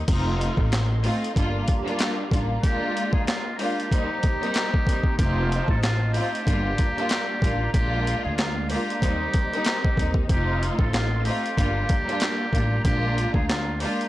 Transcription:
0.07 F1 A3 C4 D#4 F4 A4 D#5 F5 C6, kick, closed hi-hat, crash
0.41 closed hi-hat
0.57 A1, kick
0.72 finger snap, snare, clap, closed hi-hat
1.02 A3 C4 D#4 F4, open hi-hat
1.24 closed hi-hat
1.34 G1 G3 A#3 D4 F4 G4 D5 A#5, kick, closed hi-hat
1.68 kick, closed hi-hat
1.85 G3 A#3 D4 F4, closed hi-hat
1.99 finger snap, snare, clap, closed hi-hat
2.30 A1 G3 A#3 D4 F4, kick, closed hi-hat
2.63 G#3 A#3 D4 F4 G4, kick, closed hi-hat
2.97 closed hi-hat
3.13 G#4, kick
3.27 F4, finger snap, snare, clap, closed hi-hat
3.58 G#3 A#3 D4 F4 G4, open hi-hat
3.80 closed hi-hat
3.91 G3 A#3 C4 D#4 G4 C5 D#5, kick, closed hi-hat
4.23 kick, closed hi-hat
4.40 G3 A#3 C4 D#4, closed hi-hat
4.54 finger snap, snare, clap, closed hi-hat
4.74 kick
4.86 G3 A#3 C4 D#4, kick, closed hi-hat
5.04 kick
5.17 F1 A3 C4 D#4 F4 G4 D#5 A5, kick, closed hi-hat
5.52 closed hi-hat
5.68 A1 A4, kick
5.83 F4, finger snap, snare, clap, closed hi-hat
6.13 A3 C4 D#4 F4 G4, open hi-hat
6.35 closed hi-hat
6.45 G1 G3 A#3 D4 F4 G4 D5 F5 A#5, kick, closed hi-hat
6.78 kick, closed hi-hat
6.95 G3 A#3 D4 F4, closed hi-hat
7.09 finger snap, snare, clap, closed hi-hat
7.41 A1 G3 A#3 D4 F4, kick, closed hi-hat
7.73 A#1 G#3 A#3 D4 F4 G4, kick, closed hi-hat
8.07 closed hi-hat
8.25 D2 G#4
8.37 F4, finger snap, snare, clap, closed hi-hat
8.69 G#3 A#3 D4 F4 G4, open hi-hat
8.90 closed hi-hat
9.01 D#2 G3 A#3 C4 D#4 G4 C5 D#5, kick, closed hi-hat
9.34 kick, closed hi-hat
9.51 G3 A#3 C4 D#4, closed hi-hat
9.65 finger snap, snare, clap, closed hi-hat
9.85 kick
9.97 D#2 G3 A#3 C4 D#4, kick, closed hi-hat
10.14 kick
10.28 F1 A3 C4 D#4 F4 G4 A4 D#5 F5 C6, kick, closed hi-hat
10.63 closed hi-hat
10.78 A1 A4, kick
10.93 F4, finger snap, snare, clap, closed hi-hat
11.24 A3 C4 D#4 F4 G4, open hi-hat
11.46 closed hi-hat
11.56 G1 G3 A#3 D4 F4 G4 D5 A#5, kick, closed hi-hat
11.89 kick, closed hi-hat
12.06 G3 A#3 D4 F4, closed hi-hat
12.20 finger snap, snare, clap, closed hi-hat
12.52 A1 G3 A#3 D4 F4, kick, closed hi-hat
12.84 A#1 G#3 A#3 D4 F4 G4, kick, closed hi-hat
13.18 closed hi-hat
13.34 D2 G#4, kick
13.48 F4, snare, clap, closed hi-hat
13.79 G#3 A#3 D4 F4 G4, open hi-hat
14.01 closed hi-hat

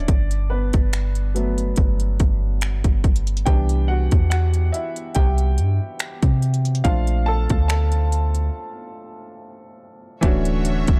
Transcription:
Already playing: C#4 D4 C#5 D5
0.08 G1, kick, closed hi-hat
0.31 closed hi-hat
0.50 B3 B4
0.73 G1, kick, closed hi-hat
0.93 finger snap, closed hi-hat
1.15 closed hi-hat
1.35 F#3 A3 B3, closed hi-hat
1.58 closed hi-hat
1.76 G1, kick, closed hi-hat
2.00 closed hi-hat
2.20 G1, kick, closed hi-hat
2.61 finger snap, closed hi-hat
2.84 G1, kick, closed hi-hat
3.04 kick, closed hi-hat
3.16 closed hi-hat
3.27 closed hi-hat
3.37 closed hi-hat
3.46 C2 E3 B3 D4 G4 G5, kick, closed hi-hat
3.69 closed hi-hat
3.88 F#4 F#5
4.11 E2, kick, closed hi-hat
4.30 F#4 F#5, finger snap, closed hi-hat
4.54 closed hi-hat
4.72 E4 E5, closed hi-hat
4.96 closed hi-hat
5.15 C2 G4 G5, kick, closed hi-hat
5.38 closed hi-hat
5.58 G2, closed hi-hat
5.99 finger snap, closed hi-hat
6.22 C3, kick, closed hi-hat
6.42 closed hi-hat
6.54 closed hi-hat
6.65 closed hi-hat
6.75 closed hi-hat
6.84 A#1 A3 C4 D4 F4 F5, kick, closed hi-hat
7.07 closed hi-hat
7.26 A4 A5
7.50 D2, kick, closed hi-hat
7.68 A4 A5, finger snap, closed hi-hat
7.92 closed hi-hat
8.12 closed hi-hat
8.35 closed hi-hat
10.21 D1 D3 E3 A3 C#4 D4 F#4 C#5 E5, kick, closed hi-hat
10.45 closed hi-hat
10.65 closed hi-hat
10.87 D1, kick, closed hi-hat

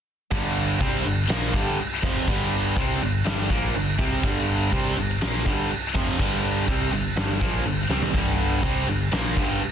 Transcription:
0.31 G1 G2 D3 G3, kick, crash
0.56 crash
0.80 C2 C3 G3 C4, kick, crash
1.05 G1 G2 D3, crash
1.29 A#1 A#2 F3 A#3, snare, crash
1.53 G1 G2 D3 G3, kick, crash
1.78 crash
2.02 F1 F2 C3 F3, kick, crash
2.27 G1 G2 D3 G3, kick, crash
2.53 crash
2.76 C2 C3 G3 C4, kick, crash
3.01 G1 G2 D3, crash
3.24 G1 G2 D3 G3, snare, crash
3.49 A#1 A#2 F3 A#3, kick, crash
3.74 G1 G2 D3, crash
3.98 C2 C3 G3 C4, kick, crash
4.23 G1 G2 D3 G3, kick, crash
4.48 crash
4.72 C2 C3 G3 C4, kick, crash
4.97 G1 G2 D3, crash
5.21 A#1 A#2 F3 A#3, snare, crash
5.46 G1 G2 D3 G3, kick, crash
5.71 crash
5.95 F1 F2 C3 F3, kick, snare, crash
6.19 G1 G2 D3 G3, kick, crash
6.44 crash
6.68 C2 C3 G3 C4, kick, crash
6.92 G1 G2 D3, crash
7.16 G1 G2 D3 G3, snare, crash
7.41 A#1 A#2 F3 A#3, kick, crash
7.65 G1 G2 D3, crash
7.89 C2 C3 G3 C4, snare
8.02 floor tom
8.14 G1 G2 D3 G3, kick, crash
8.39 crash
8.63 C2 C3 G3 C4, kick, crash
8.87 G1 G2 D3, crash
9.12 A#1 A#2 F3 A#3, snare, crash
9.36 G1 G2 D3 G3, kick, crash
9.61 crash

